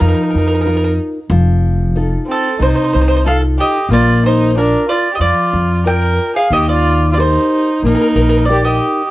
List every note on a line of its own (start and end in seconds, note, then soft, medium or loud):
0.00 0.12 F2 medium
0.00 0.64 F3 soft
0.00 0.96 D#4 medium
0.00 0.07 A#4 medium
0.09 0.13 A#4 medium
0.14 0.22 A#4 medium
0.23 0.29 A#4 soft
0.31 0.37 A#4 medium
0.35 0.97 F2 medium
0.35 0.45 A#4 soft
0.48 0.53 A#4 medium
0.54 0.60 A#4 soft
0.61 0.66 A#4 soft
0.66 1.18 D#4 soft
0.66 1.18 F4 soft
0.66 0.75 A#4 soft
0.66 1.19 A#4 medium
0.77 0.83 A#4 medium
0.84 0.92 A#4 soft
1.30 2.14 F1 loud
1.30 1.94 F3 medium
1.96 2.48 D#4 medium
1.96 2.48 F4 soft
1.96 2.48 A4 medium
2.27 2.57 C4 medium
2.31 2.59 A4 medium
2.60 2.71 C2 medium
2.60 3.23 C3 medium
2.60 3.21 D#4 medium
2.60 2.67 C5 medium
2.68 2.74 C5 soft
2.75 2.83 C5 medium
2.84 2.91 C5 medium
2.93 3.57 C2 medium
2.93 2.99 C5 medium
3.01 3.06 C5 medium
3.08 3.14 C5 medium
3.16 3.22 C5 medium
3.26 3.78 D#4 soft
3.26 3.78 F4 soft
3.26 3.41 A4 medium
3.26 3.78 A4 medium
3.26 3.36 F5 medium
3.59 3.88 G4 medium
3.59 3.89 D#5 medium
3.89 4.74 A#1 medium
3.89 4.54 A#3 medium
3.89 4.23 F4 medium
3.93 4.24 D5 medium
4.26 4.54 D#4 medium
4.26 4.57 C5 medium
4.57 4.88 D4 medium
4.57 5.08 F4 soft
4.57 5.08 A#4 soft
4.57 4.89 A#4 medium
4.57 5.09 D5 soft
4.89 5.12 F4 medium
4.89 5.12 D5 medium
5.13 5.20 G4 medium
5.13 5.21 D#5 medium
5.20 5.31 F2 medium
5.20 5.85 F3 medium
5.20 5.83 F4 medium
5.20 5.89 D5 medium
5.53 6.17 F2 medium
5.85 6.39 F4 soft
5.85 6.39 A#4 soft
5.85 6.33 A#4 medium
5.85 6.39 D5 soft
5.85 6.34 G5 medium
6.36 6.51 G#4 medium
6.36 6.51 F5 medium
6.51 7.36 D#2 medium
6.51 7.16 D#3 medium
6.51 6.69 G4 medium
6.51 6.69 D#5 medium
6.69 7.09 F4 medium
6.69 7.08 D5 medium
7.12 7.18 F4 medium
7.12 7.19 D5 medium
7.17 7.70 D#4 soft
7.17 7.81 D#4 medium
7.17 7.70 G4 soft
7.17 7.70 A#4 medium
7.17 7.80 C5 medium
7.83 7.94 A#1 medium
7.83 8.47 A#3 medium
7.83 7.92 A#4 medium
7.87 8.46 D#4 medium
7.95 8.00 A#4 medium
8.01 8.07 A#4 medium
8.08 8.15 A#4 soft
8.15 8.78 A#1 medium
8.15 8.21 A#4 medium
8.22 8.28 A#4 medium
8.29 8.36 A#4 medium
8.38 8.44 A#4 medium
8.45 9.01 D#4 medium
8.45 8.63 D5 medium
8.50 9.01 G4 soft
8.50 8.64 G4 medium
8.50 9.01 A#4 medium
8.64 9.09 G4 medium
8.64 9.10 D#5 medium